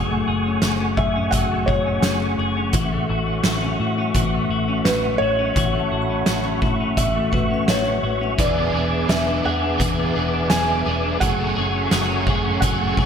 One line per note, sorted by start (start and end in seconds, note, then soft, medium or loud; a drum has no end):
0.00 0.22 F#1 medium
0.00 1.33 F#3 medium
0.00 8.34 A3 medium
0.00 0.26 G#4 medium
0.00 8.35 F#5 medium
0.00 2.70 G#5 medium
0.00 8.34 C#6 medium
0.11 1.51 A3 medium
0.27 0.58 F#1 medium
0.27 0.62 G#4 medium
0.46 0.80 C#4 medium
0.62 0.93 F#1 medium
0.62 0.97 G#4 medium
0.62 snare medium
0.62 closed hi-hat medium
0.80 1.15 C#4 medium
0.97 1.28 F#2 medium
0.97 1.33 G#4 medium
0.97 1.34 E5 medium
0.97 kick medium
1.16 1.86 C#4 medium
1.31 1.63 F#1 medium
1.31 2.74 F#3 medium
1.31 1.67 G#4 medium
1.31 1.68 F#5 medium
1.31 kick medium
1.31 closed hi-hat medium
1.51 2.92 A3 soft
1.66 1.99 F#1 medium
1.66 2.03 G#4 medium
1.66 2.33 C#5 medium
1.66 kick medium
1.87 2.21 C#4 medium
2.02 2.34 F#1 medium
2.02 2.38 G#4 medium
2.02 snare loud
2.02 closed hi-hat medium
2.21 2.56 C#4 medium
2.39 2.69 F#1 medium
2.39 2.74 G#4 medium
2.57 3.26 C#4 medium
2.73 3.05 A1 medium
2.73 4.15 E3 medium
2.73 3.08 F#4 medium
2.73 11.17 E5 medium
2.73 kick medium
2.73 closed hi-hat medium
2.92 4.32 A3 medium
3.09 3.40 A1 medium
3.09 3.43 F#4 medium
3.26 3.61 C#4 medium
3.44 3.75 A1 medium
3.44 3.78 F#4 medium
3.44 snare loud
3.44 closed hi-hat medium
3.62 3.97 C#4 medium
3.80 4.11 A2 loud
3.80 4.14 F#4 medium
3.98 4.67 C#4 medium
4.14 4.46 A1 medium
4.14 5.56 E3 medium
4.14 4.49 F#4 medium
4.14 kick medium
4.14 closed hi-hat medium
4.33 5.73 A3 soft
4.50 4.81 A1 medium
4.50 4.85 F#4 medium
4.68 5.03 C#4 medium
4.85 5.16 A1 medium
4.85 5.21 F#4 medium
4.85 5.18 B4 medium
4.85 snare loud
4.85 closed hi-hat medium
5.04 5.38 C#4 soft
5.18 5.52 A1 medium
5.18 6.57 C#5 loud
5.22 5.56 F#4 medium
5.39 6.08 C#4 medium
5.56 5.87 A1 medium
5.56 6.97 E3 medium
5.56 5.90 F#4 medium
5.56 6.47 F#5 medium
5.56 kick medium
5.56 closed hi-hat medium
5.75 7.15 A3 medium
5.79 6.67 A5 soft
5.92 6.23 A1 medium
5.92 6.26 F#4 medium
6.02 6.87 B5 soft
6.10 6.44 C#4 medium
6.26 6.58 A1 medium
6.26 6.61 F#4 medium
6.26 snare medium
6.26 closed hi-hat medium
6.45 6.79 C#4 medium
6.62 6.93 A2 medium
6.62 6.97 F#4 medium
6.62 kick medium
6.80 7.49 C#4 medium
6.97 7.28 A1 medium
6.97 8.38 E3 medium
6.97 7.31 F#4 medium
6.97 7.70 E5 medium
6.97 kick medium
6.97 closed hi-hat medium
7.16 8.46 A3 soft
7.32 7.64 A1 medium
7.32 7.67 F#4 medium
7.32 8.23 B4 medium
7.32 kick medium
7.50 7.85 C#4 medium
7.50 8.43 E5 soft
7.68 7.99 A1 medium
7.68 8.02 F#4 medium
7.68 8.18 C#5 medium
7.68 snare loud
7.68 closed hi-hat medium
7.76 8.63 F#5 soft
7.86 8.20 C#4 medium
8.03 8.34 A1 medium
8.03 8.39 F#4 medium
8.21 8.46 C#4 medium
8.38 8.70 E1 medium
8.38 9.79 E3 medium
8.38 8.74 E3 medium
8.38 8.74 B3 medium
8.38 8.75 D4 medium
8.38 8.74 G#4 medium
8.38 8.72 G#4 medium
8.38 11.18 B4 medium
8.38 9.11 D5 medium
8.38 13.06 G#5 medium
8.38 11.18 D6 medium
8.38 kick loud
8.38 closed hi-hat medium
8.57 9.97 B3 medium
8.73 9.05 E1 medium
8.73 9.10 D4 soft
8.73 9.09 G#4 soft
8.73 9.08 G#4 medium
8.78 9.09 B3 soft
8.91 9.26 D4 medium
9.08 9.40 E1 medium
9.08 9.44 E3 medium
9.08 9.45 B3 medium
9.08 9.44 D4 medium
9.08 9.45 G#4 medium
9.08 9.46 E5 medium
9.08 snare loud
9.08 closed hi-hat soft
9.13 9.42 G#4 medium
9.28 9.61 D4 medium
9.43 9.76 E2 medium
9.43 9.79 D4 soft
9.43 9.79 G#4 soft
9.43 9.81 G#4 medium
9.43 10.54 F#5 medium
9.48 9.78 B3 soft
9.63 10.32 D4 medium
9.78 10.11 E1 medium
9.78 10.14 E3 medium
9.78 11.21 E3 medium
9.78 10.15 B3 medium
9.78 10.15 D4 medium
9.78 10.16 G#4 medium
9.78 kick medium
9.78 closed hi-hat medium
9.82 10.13 G#4 medium
9.98 11.28 B3 medium
10.14 10.47 E1 medium
10.14 10.51 D4 soft
10.14 10.50 G#4 soft
10.14 10.51 G#4 medium
10.19 10.51 B3 soft
10.33 10.68 D4 medium
10.50 10.82 E1 medium
10.50 10.85 E3 medium
10.50 10.86 B3 medium
10.50 10.87 D4 medium
10.50 10.86 G#4 medium
10.50 11.23 G#5 medium
10.50 snare loud
10.50 closed hi-hat medium
10.55 10.85 G#4 medium
10.69 11.02 D4 medium
10.86 11.17 E1 medium
10.86 11.22 D4 medium
10.86 11.21 G#4 soft
10.86 11.21 G#4 medium
10.90 11.22 B3 soft
11.03 11.28 D4 medium
11.20 11.52 F#1 medium
11.20 11.56 F#3 medium
11.20 12.62 F#3 medium
11.20 13.06 A3 medium
11.20 11.57 A3 medium
11.20 11.57 C#4 medium
11.20 11.55 G#4 medium
11.20 12.22 F#5 medium
11.20 13.06 F#5 medium
11.20 13.06 C#6 medium
11.20 kick medium
11.20 closed hi-hat medium
11.24 11.54 G#4 medium
11.39 12.80 A3 medium
11.55 11.88 F#1 medium
11.55 11.92 C#4 soft
11.55 11.91 G#4 soft
11.55 11.91 G#4 medium
11.60 11.92 A3 soft
11.74 12.09 C#4 medium
11.91 12.23 F#1 medium
11.91 12.27 F#3 medium
11.91 12.28 A3 medium
11.91 12.29 C#4 medium
11.91 12.26 G#4 medium
11.91 snare loud
11.91 closed hi-hat medium
11.97 12.25 G#4 medium
12.09 12.45 C#4 medium
12.27 12.58 F#2 medium
12.27 12.63 C#4 soft
12.27 12.62 G#4 medium
12.27 kick medium
12.32 12.62 A3 soft
12.45 13.06 C#4 medium
12.60 12.93 F#1 medium
12.60 12.97 F#3 medium
12.60 13.06 F#3 medium
12.60 12.98 A3 medium
12.60 12.98 C#4 medium
12.60 12.97 G#4 medium
12.60 13.06 F#5 medium
12.60 kick medium
12.60 closed hi-hat medium
12.65 12.96 G#4 medium
12.81 13.06 A3 medium
12.97 13.06 F#1 medium
12.97 13.06 C#4 soft
12.97 13.06 G#4 soft
12.97 13.06 G#4 medium
12.97 kick medium
13.02 13.06 A3 soft